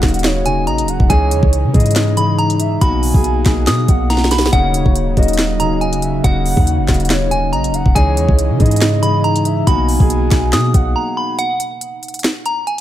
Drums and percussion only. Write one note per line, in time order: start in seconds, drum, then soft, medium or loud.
0.02 kick loud
0.02 snare loud
0.02 clap medium
0.02 closed hi-hat soft
0.08 closed hi-hat medium
0.14 closed hi-hat medium
0.19 closed hi-hat medium
0.24 snare loud
0.24 clap loud
0.24 closed hi-hat medium
0.46 closed hi-hat medium
0.67 closed hi-hat soft
0.78 closed hi-hat medium
0.88 closed hi-hat medium
1.00 kick medium
1.10 kick loud
1.10 closed hi-hat medium
1.31 closed hi-hat medium
1.43 kick medium
1.53 closed hi-hat medium
1.74 kick loud
1.74 closed hi-hat soft
1.80 closed hi-hat medium
1.86 closed hi-hat medium
1.91 closed hi-hat medium
1.96 snare loud
1.96 clap loud
1.96 closed hi-hat medium
2.17 closed hi-hat medium
2.39 closed hi-hat soft
2.50 closed hi-hat medium
2.60 closed hi-hat medium
2.81 kick loud
2.81 closed hi-hat medium
3.03 open hi-hat loud
3.14 kick medium
3.24 closed hi-hat medium
3.45 kick loud
3.45 snare medium
3.45 clap medium
3.45 closed hi-hat medium
3.67 snare loud
3.67 clap loud
3.67 closed hi-hat medium
3.88 kick medium
3.88 closed hi-hat medium
4.10 snare medium
4.10 closed hi-hat medium
4.17 snare medium
4.24 snare medium
4.31 snare medium
4.31 closed hi-hat medium
4.38 snare loud
4.46 snare loud
4.53 kick loud
4.53 closed hi-hat medium
4.74 closed hi-hat loud
4.86 kick medium
4.96 closed hi-hat medium
5.17 kick medium
5.17 closed hi-hat soft
5.23 closed hi-hat medium
5.28 closed hi-hat medium
5.33 closed hi-hat medium
5.38 snare loud
5.38 clap loud
5.38 closed hi-hat medium
5.60 closed hi-hat medium
5.81 closed hi-hat soft
5.93 closed hi-hat medium
6.02 closed hi-hat medium
6.24 kick loud
6.24 closed hi-hat medium
6.46 open hi-hat medium
6.57 kick medium
6.67 closed hi-hat medium
6.88 kick loud
6.88 snare loud
6.88 clap medium
6.88 closed hi-hat soft
6.94 closed hi-hat medium
7.00 closed hi-hat medium
7.05 closed hi-hat medium
7.10 snare loud
7.10 clap loud
7.10 closed hi-hat medium
7.31 closed hi-hat medium
7.53 closed hi-hat soft
7.64 closed hi-hat medium
7.74 closed hi-hat medium
7.86 kick medium
7.96 kick loud
7.96 closed hi-hat medium
8.17 closed hi-hat medium
8.29 kick medium
8.39 closed hi-hat medium
8.60 kick medium
8.60 closed hi-hat soft
8.66 closed hi-hat medium
8.71 closed hi-hat medium
8.76 closed hi-hat medium
8.81 snare loud
8.81 clap loud
8.81 closed hi-hat medium
9.03 closed hi-hat medium
9.24 closed hi-hat soft
9.36 closed hi-hat medium
9.45 closed hi-hat medium
9.67 kick loud
9.67 closed hi-hat medium
9.89 open hi-hat medium
10.00 kick medium
10.10 closed hi-hat medium
10.31 kick loud
10.31 snare loud
10.31 clap medium
10.31 closed hi-hat medium
10.53 snare loud
10.53 clap loud
10.53 closed hi-hat medium
10.74 kick medium
10.74 closed hi-hat medium
11.39 closed hi-hat medium
11.60 closed hi-hat medium
11.81 closed hi-hat medium
12.03 closed hi-hat soft
12.08 closed hi-hat medium
12.14 closed hi-hat medium
12.19 closed hi-hat medium
12.24 snare loud
12.24 clap loud
12.24 closed hi-hat medium
12.46 closed hi-hat medium
12.67 closed hi-hat soft